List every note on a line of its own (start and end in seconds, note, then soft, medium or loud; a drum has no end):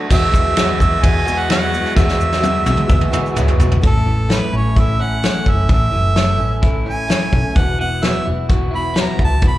0.00 0.11 A3 soft
0.00 0.10 D4 medium
0.00 0.11 D4 soft
0.00 0.12 F#4 medium
0.10 0.34 E2 medium
0.10 0.29 E2 loud
0.10 0.34 B2 medium
0.10 0.34 E3 medium
0.10 0.33 G#3 medium
0.10 3.80 B3 medium
0.10 0.32 B3 medium
0.10 3.80 E4 medium
0.10 0.45 F#4 medium
0.10 0.31 F#4 medium
0.10 3.80 F#4 medium
0.10 3.80 G#4 medium
0.10 0.46 G#4 medium
0.10 0.46 E5 medium
0.10 0.78 E5 loud
0.10 kick loud
0.10 crash loud
0.10 shaker medium
0.33 0.71 E2 medium
0.33 0.54 E3 soft
0.33 0.55 G#3 soft
0.33 0.56 B3 soft
0.33 0.57 F#4 medium
0.33 kick medium
0.33 shaker medium
0.55 1.28 E2 loud
0.55 1.03 B2 medium
0.55 0.80 E3 medium
0.55 0.80 G#3 medium
0.55 0.80 B3 medium
0.55 0.92 F#4 medium
0.55 0.78 F#4 medium
0.55 0.92 G#4 medium
0.55 0.92 B4 medium
0.55 snare loud
0.55 ride bell medium
0.55 shaker medium
0.79 0.99 E2 medium
0.79 1.02 E3 soft
0.79 1.03 G#3 medium
0.79 1.03 B3 medium
0.79 1.04 F#4 medium
0.79 1.05 E5 medium
0.79 kick medium
0.79 shaker medium
1.02 1.27 E2 medium
1.02 1.78 E2 loud
1.02 1.27 B2 medium
1.02 1.27 E3 medium
1.02 1.27 G#3 medium
1.02 1.26 B3 medium
1.02 1.39 F#4 medium
1.02 1.26 F#4 medium
1.02 1.39 G#4 medium
1.02 1.39 E5 medium
1.02 1.41 G#5 loud
1.02 kick loud
1.02 ride bell medium
1.02 shaker medium
1.27 1.49 E3 soft
1.27 1.49 G#3 medium
1.27 1.50 B3 medium
1.27 1.50 F#4 medium
1.27 shaker medium
1.39 1.51 F#5 medium
1.39 shaker soft
1.50 1.74 E3 medium
1.50 1.73 G#3 medium
1.50 1.73 B3 medium
1.50 1.85 F#4 medium
1.50 1.72 F#4 medium
1.50 1.86 G#4 medium
1.50 1.86 E5 medium
1.50 1.94 F#5 medium
1.50 snare loud
1.50 ride bell medium
1.50 shaker medium
1.73 1.96 E3 soft
1.73 1.96 G#3 soft
1.73 1.97 B3 soft
1.73 1.97 F#4 soft
1.73 shaker medium
1.86 snare soft
1.95 2.20 E2 medium
1.95 2.15 E2 loud
1.95 2.21 B2 medium
1.95 2.21 E3 medium
1.95 2.21 G#3 medium
1.95 2.20 B3 medium
1.95 2.31 F#4 medium
1.95 2.18 F#4 medium
1.95 2.31 G#4 medium
1.95 2.31 E5 medium
1.95 3.33 E5 loud
1.95 kick loud
1.95 snare medium
1.95 shaker medium
2.09 snare medium
2.19 2.57 E2 medium
2.19 2.41 E3 soft
2.19 2.42 G#3 soft
2.19 2.43 B3 soft
2.19 2.43 F#4 medium
2.19 shaker medium
2.33 snare medium
2.40 2.89 E2 medium
2.40 2.89 B2 medium
2.40 2.66 E3 medium
2.40 2.66 G#3 medium
2.40 2.77 F#4 medium
2.40 2.77 G#4 medium
2.40 2.77 E5 medium
2.40 high tom medium
2.40 shaker medium
2.44 2.66 B3 medium
2.44 2.64 F#4 medium
2.66 2.76 B1 medium
2.66 2.87 E3 medium
2.66 2.88 G#3 medium
2.66 2.89 B3 medium
2.66 2.89 F#4 medium
2.66 high tom medium
2.66 shaker medium
2.77 mid tom medium
2.88 3.13 E2 medium
2.88 3.08 E2 medium
2.88 3.13 B2 medium
2.88 3.13 E3 medium
2.88 3.12 G#3 medium
2.88 3.11 B3 medium
2.88 3.24 F#4 medium
2.88 3.10 F#4 medium
2.88 3.24 G#4 medium
2.88 3.24 E5 loud
2.88 kick loud
2.88 shaker medium
3.01 mid tom medium
3.12 3.34 E3 medium
3.12 3.35 G#3 medium
3.12 3.36 B3 medium
3.12 3.36 F#4 medium
3.12 mid tom medium
3.12 shaker medium
3.26 shaker soft
3.35 3.59 C#2 medium
3.35 3.59 E3 medium
3.35 3.60 G#3 medium
3.35 3.60 B3 medium
3.35 3.71 F#4 medium
3.35 3.59 F#4 medium
3.35 3.72 G#4 medium
3.35 3.72 C#5 medium
3.35 mid tom medium
3.35 shaker medium
3.48 floor tom medium
3.60 3.82 B1 medium
3.60 3.81 E3 soft
3.60 3.82 G#3 soft
3.60 3.83 B3 medium
3.60 3.82 F#4 medium
3.60 floor tom loud
3.60 shaker medium
3.71 floor tom medium
3.81 4.39 A1 loud
3.81 4.06 A2 medium
3.81 4.06 E3 medium
3.81 4.06 A3 medium
3.81 7.53 A3 medium
3.81 4.06 C#4 medium
3.81 7.53 C#4 medium
3.81 4.04 E4 medium
3.81 7.53 E4 medium
3.81 7.53 A4 medium
3.81 kick loud
3.81 closed hi-hat medium
3.86 4.36 A4 medium
4.05 5.92 E3 medium
4.05 4.29 A3 soft
4.05 4.28 C#4 soft
4.05 4.29 E4 soft
4.29 4.53 A2 medium
4.29 4.53 E3 medium
4.29 4.53 A3 medium
4.29 4.52 C#4 medium
4.29 4.51 E4 medium
4.29 snare loud
4.29 closed hi-hat medium
4.34 4.58 B4 medium
4.52 5.27 A1 medium
4.52 4.76 A3 soft
4.52 4.77 C#4 medium
4.52 4.76 E4 medium
4.56 4.81 C#5 medium
4.76 5.00 E3 soft
4.76 5.00 A3 medium
4.76 4.99 C#4 medium
4.76 4.97 E4 medium
4.76 5.03 E5 medium
4.76 kick loud
4.76 closed hi-hat medium
4.99 5.22 A3 soft
4.99 5.22 C#4 soft
4.99 5.23 E4 medium
4.99 5.51 F#5 medium
5.22 5.46 A2 medium
5.22 5.46 E3 medium
5.22 5.46 A3 medium
5.22 5.46 C#4 medium
5.22 5.45 E4 medium
5.22 snare loud
5.22 closed hi-hat medium
5.46 5.65 F#1 medium
5.46 5.68 A3 soft
5.46 5.69 C#4 soft
5.46 5.69 E4 soft
5.46 5.71 E5 medium
5.46 kick medium
5.69 5.88 A1 loud
5.69 5.93 A2 medium
5.69 5.93 E3 medium
5.69 5.93 A3 medium
5.69 5.91 C#4 medium
5.69 5.90 E4 medium
5.69 kick loud
5.69 closed hi-hat medium
5.74 6.62 E5 loud
5.91 6.39 F#1 medium
5.91 7.79 E3 medium
5.91 6.15 A3 soft
5.91 6.15 C#4 soft
5.91 6.15 E4 soft
6.15 6.39 A2 medium
6.15 6.40 E3 medium
6.15 6.40 A3 medium
6.15 6.38 C#4 medium
6.15 6.37 E4 medium
6.15 snare loud
6.15 closed hi-hat medium
6.38 7.13 A1 medium
6.38 6.62 A3 soft
6.38 6.63 C#4 medium
6.38 6.62 E4 medium
6.62 6.86 E3 medium
6.62 6.86 A3 medium
6.62 6.86 C#4 medium
6.62 6.84 E4 medium
6.62 kick loud
6.62 closed hi-hat medium
6.86 7.09 A3 soft
6.86 7.09 C#4 soft
6.86 7.09 E4 medium
6.90 7.59 G#5 medium
7.09 7.33 A2 medium
7.09 7.33 E3 medium
7.09 7.33 A3 medium
7.09 7.32 C#4 medium
7.09 7.31 E4 medium
7.09 snare loud
7.09 closed hi-hat medium
7.32 7.42 B1 medium
7.32 7.56 A3 soft
7.32 7.57 C#4 soft
7.32 7.56 E4 medium
7.32 kick medium
7.55 8.11 E1 loud
7.55 7.79 E2 medium
7.55 7.80 B2 medium
7.55 7.80 E3 medium
7.55 9.58 B3 medium
7.55 7.80 B3 medium
7.55 9.58 E4 medium
7.55 7.79 E4 medium
7.55 9.58 F#4 medium
7.55 7.78 F#4 medium
7.55 9.58 B4 medium
7.55 7.80 F#5 medium
7.55 kick loud
7.55 closed hi-hat medium
7.79 8.02 E3 soft
7.79 8.03 B3 soft
7.79 8.03 E4 soft
7.79 8.03 F#4 soft
7.79 8.06 F#5 medium
8.02 8.26 E2 medium
8.02 8.26 B2 medium
8.02 8.27 E3 medium
8.02 8.27 B3 medium
8.02 8.26 E4 medium
8.02 8.25 F#4 medium
8.02 8.27 E5 medium
8.02 snare loud
8.02 closed hi-hat medium
8.26 9.01 E1 medium
8.26 8.48 E3 soft
8.26 8.49 B3 medium
8.26 8.50 E4 soft
8.26 8.49 F#4 medium
8.49 8.73 E3 medium
8.49 8.73 B3 medium
8.49 8.73 E4 medium
8.49 8.73 F#4 medium
8.49 kick loud
8.49 closed hi-hat medium
8.74 8.96 E3 soft
8.74 8.96 B3 soft
8.74 8.96 E4 soft
8.74 8.97 F#4 soft
8.74 8.97 B5 medium
8.95 9.20 E2 medium
8.95 9.20 B2 medium
8.95 9.20 E3 medium
8.95 9.19 B3 medium
8.95 9.19 E4 medium
8.95 9.18 F#4 medium
8.95 snare loud
8.95 closed hi-hat medium
9.01 9.21 A#5 medium
9.19 9.38 C#2 medium
9.19 9.41 E3 soft
9.19 9.41 B3 soft
9.19 9.41 E4 medium
9.19 9.41 F#4 medium
9.19 kick medium
9.25 9.45 A5 loud
9.41 9.58 E1 medium
9.41 9.58 E2 medium
9.41 9.58 B2 medium
9.41 9.58 E3 medium
9.41 9.58 B3 medium
9.41 9.58 E4 medium
9.41 9.58 F#4 medium
9.41 kick loud
9.41 closed hi-hat medium
9.47 9.58 B5 medium